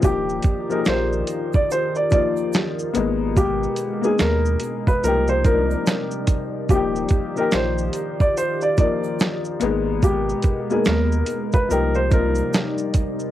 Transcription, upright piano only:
X:1
M:4/4
L:1/16
Q:"Swing 16ths" 1/4=72
K:Eb
V:1 name="Upright piano"
[F,B,EG]3 [F,B,EAB]6 z [F,B,EF]4 [A,B,_CE]2- | [A,B,_CE]2 z [B,CEA]4- [B,CEA] [F,B,EG]2 [F,B,DEB]4- [F,B,DEB] z | [F,B,EG]3 [F,B,EG]6 z [F,B,EB]4 [A,B,_CE]2- | [A,B,_CE]2 z [B,CEB]4- [B,CEB] [F,B,EG]2 [F,B,EF]4- [F,B,EF] z |]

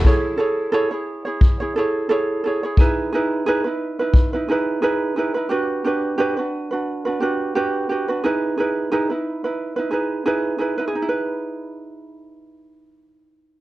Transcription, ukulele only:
X:1
M:4/4
L:1/16
Q:"Swing 16ths" 1/4=88
K:E
V:1 name="Ukulele"
[EGAc]2 [EGAc]2 [EGAc] [EGc]2 [EGc]2 [EGc] [EGAc]2 [EGAc]2 [EGAc] [EGc] | [DEGB]2 [DEGB]2 [DEGB] [DEB]2 [DEB]2 [DEB] [DEGB]2 [DEGB]2 [DEGB] [DEB] | [=DF=GB]2 [DFGB]2 [DFGB] [DFB]2 [DFB]2 [DFB] [DFGB]2 [DFGB]2 [DFGB] [DFB] | [DEGB]2 [DEGB]2 [DEGB] [DEB]2 [DEB]2 [DEB] [DEGB]2 [DEGB]2 [DEGB] [DEB] |
[DEGB]16 |]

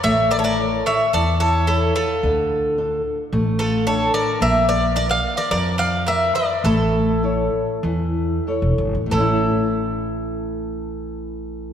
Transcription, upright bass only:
X:1
M:4/4
L:1/16
Q:1/4=108
K:none
V:1 name="Upright bass" clef=bass
A,,,8 E,,8 | D,,8 A,,,8 | _B,,,8 F,,8 | A,,,8 E,,4- E,, E,,, G,,, A,,, |
A,,,16 |]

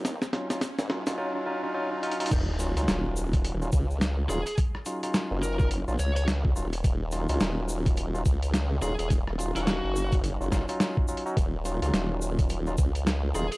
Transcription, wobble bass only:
X:1
M:4/4
L:1/16
Q:"Swing 16ths" 1/4=106
K:Ebm
V:1 name="Wobble bass" clef=bass
E,, z4 A,,,2 E,,, z8 | E,,,3 D,, E,,,6 D,,4 E,,, z | z4 z G,,,4 B,,, D,,4 E,,,2 | E,,,3 D,, E,,,6 D,,4 E,,, E,,,- |
E,,, E,,,2 E,,,2 G,,,4 G,,, G,,, z4 z | E,,,3 D,, E,,,6 D,,4 E,,, z |]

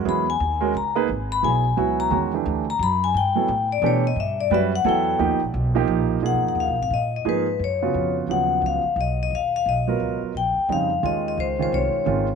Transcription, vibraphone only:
X:1
M:3/4
L:1/8
Q:"Swing" 1/4=175
K:Elyd
V:1 name="Vibraphone"
b g3 a z | z b g3 a | z3 a b g | =g3 =d c ^d |
e =d e f =g2- | =g z4 z | [K:G#dor] f f e e d d | B2 c3 z |
f2 e2 d d | e e d3 z | =g2 e2 d d | ^B B c3 z |]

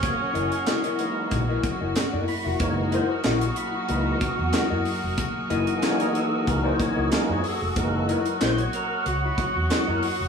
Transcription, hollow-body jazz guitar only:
X:1
M:4/4
L:1/16
Q:1/4=93
K:F#mix
V:1 name="Hollow-body jazz guitar"
z2 [EAd] z [EAd] [EAd] z3 [EAd] z [EAd] z [EAd] z [EAe] | z2 [EAd] z [EAd] z6 z [EAd] [EAd] z2 | z2 [EAd] z [EAd] [EAd] z3 [EAd] z [EAd] z4 | z2 [EAd] z [EAd] z6 z [EAd] [EAd] z2 |]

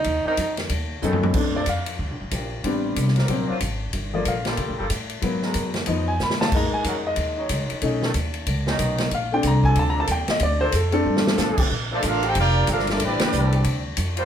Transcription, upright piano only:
X:1
M:4/4
L:1/16
Q:"Swing" 1/4=185
K:Bb
V:1 name="Upright piano"
z12 [^F,=B,^C^DA]4 | z2 d2 f4 z8 | z16 | z2 d2 f4 z8 |
z8 z2 _a2 _c'2 =a2 | b2 _a2 _g2 e6 z4 | z16 | f2 g2 b2 _a2 (3=a2 b2 a2 g2 e2 |
d2 c2 A2 A8- A z | z16 | z16 |]
V:2 name="Upright piano"
z16 | [A,CD]2 z12 z2 | [G,=B,CD]6 z2 [^F,^A,C]2 z6 | z2 [F,A,B,]2 z12 |
[_G,B,_C]6 z2 [F,CE]2 z6 | [_A,B,E]16 | [A,^C^D]2 z12 z2 | z2 [A,CD]12- [A,CD]2- |
[A,CD]2 z4 [A,CD]8- [A,CD]2 | z16 | z16 |]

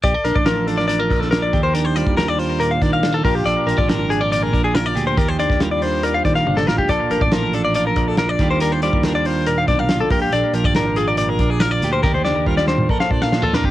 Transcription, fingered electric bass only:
X:1
M:4/4
L:1/16
Q:1/4=140
K:Bb
V:1 name="Fingered electric bass" clef=bass
B,,, z B,,, A,,,6- A,,, B,,,4 E,,2- | E,,3 E,,6- E,, E,4 B,,,2 | B,,, z B,,, _A,,,6- A,,, B,,,4 D,,2 | E,,3 E,,6- E,, E,2 G,,,2 A,,,2 |
B,,, z B,,, A,,,6- A,,, B,,,4 E,,2- | E,,3 E,,6- E,, _C,,4 B,,,2 | B,,, z B,,, _A,,,6- A,,, B,,,4 D,,2 | E,,3 E,,4- E,, B,,,2 B,,4 F,,2 |]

